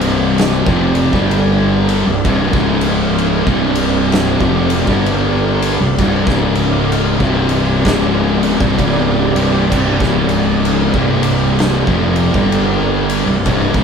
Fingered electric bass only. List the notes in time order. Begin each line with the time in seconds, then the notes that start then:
Already playing: C1
0.67 F1
1.13 G1
2.07 C1
2.25 C1
2.53 C#1
3.46 C1
4.40 F1
4.87 G1
5.81 C1
5.98 C1
6.27 C#1
7.20 C1
7.85 C#1
8.60 C1
8.78 C#1
9.35 C1
9.72 C1
10.00 C#1
10.94 C1
11.87 F1
12.34 G1
13.27 C1
13.46 C1
13.74 C#1